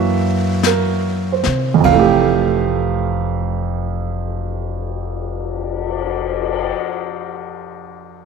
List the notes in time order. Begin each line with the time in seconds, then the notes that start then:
Already playing: F#2 E3 A#3 F#4 C#5 E5
0.63 A#4, snare, hi-hat pedal
1.32 C5
1.44 C3, snare
1.74 F2
1.80 C3, ride
1.84 F1 E3 F5, kick
1.93 A3
1.99 G4
2.71 cymbal swell